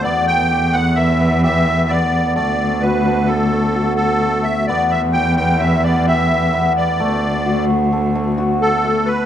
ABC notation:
X:1
M:5/4
L:1/8
Q:1/4=130
K:Em
V:1 name="Accordion"
d g2 f e2 e2 d2 | d2 B2 A3 A2 e | d e g g e d e3 d- | d3 z4 A2 B |]
V:2 name="Hammered dulcimer"
B,2 G B, B B, G2 B,2 | A,2 F A, A A, F2 A,2 | B,2 G B, B B, G2 B,2 | A,2 F A, A A, F2 A,2 |]
V:3 name="Cello" clef=bass
E,,8- E,,2 | D,,8- D,,2 | E,,8- E,,2 | D,,8- D,,2 |]